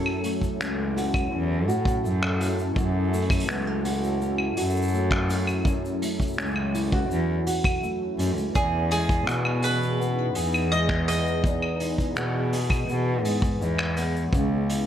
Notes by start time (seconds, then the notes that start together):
Already playing: F#2 F#3 A3 C#4 E4 F#4 A4
0.06 claves
0.24 A3, open hi-hat, shaker
0.41 kick, shaker
0.60 C#2 C#4, finger snap, shaker
0.97 F#4, open hi-hat, shaker
1.14 kick, claves, shaker
1.32 E2 C#4
1.68 A2 F#4, shaker
1.85 kick, shaker
2.04 F#2 A3, shaker
2.23 finger snap, claves
2.40 C#4, open hi-hat, shaker
2.59 shaker
2.76 F#2, kick, shaker
3.13 A3, open hi-hat, shaker
3.22 open hi-hat
3.30 kick, open hi-hat, claves, shaker
3.40 open hi-hat
3.48 C#2 B3, finger snap, shaker
3.67 C#4
3.85 F#4, open hi-hat, shaker
4.04 shaker
4.21 C#4, shaker
4.38 claves
4.57 F#2 F#4, open hi-hat, shaker
4.64 shaker
4.70 shaker
4.76 shaker
4.82 shaker
4.88 shaker
4.94 A3, shaker
5.11 finger snap, kick
5.30 C#4, open hi-hat, shaker
5.47 claves, shaker
5.65 F#2, kick, shaker
5.85 shaker
6.02 A3, open hi-hat, shaker
6.20 kick, shaker
6.27 shaker
6.33 shaker
6.38 C#2 C#4, finger snap, shaker
6.45 shaker
6.51 shaker
6.56 claves
6.74 E4, open hi-hat, shaker
6.92 F#4, kick
7.10 E2 C#4, shaker
7.47 F#4, open hi-hat, shaker
7.64 kick, claves, shaker
7.83 A3, shaker
8.18 F#2 C#4, open hi-hat, shaker
8.36 C#2, shaker
8.55 E2 E3 G#4, kick, shaker
8.83 B3
8.91 G#3 G#4, open hi-hat, shaker
9.09 kick, shaker
9.27 B2 B3, finger snap, shaker
9.45 claves
9.62 G#4 B4, open hi-hat, shaker
9.83 shaker
10.00 B3, shaker
10.04 D#4
10.35 E2 G#4, open hi-hat, shaker
10.54 claves, shaker
10.72 G#3 D#5, shaker
10.89 finger snap, kick
11.08 B3 D#5, open hi-hat, shaker
11.27 shaker
11.44 E2, kick, shaker
11.62 claves
11.80 G#3, open hi-hat, shaker
11.98 kick, shaker
12.16 B2 B3, finger snap, shaker
12.53 G#4, open hi-hat, shaker
12.70 kick, claves, shaker
12.88 B2 B3, shaker
13.25 G#2 G#4, open hi-hat, shaker
13.42 kick, shaker
13.61 E2 G#3, shaker
13.78 finger snap, claves
13.97 B3, open hi-hat, shaker
14.16 shaker
14.33 C#2 C#3, kick, shaker
14.60 E4
14.69 G#3, open hi-hat, shaker
14.81 C#4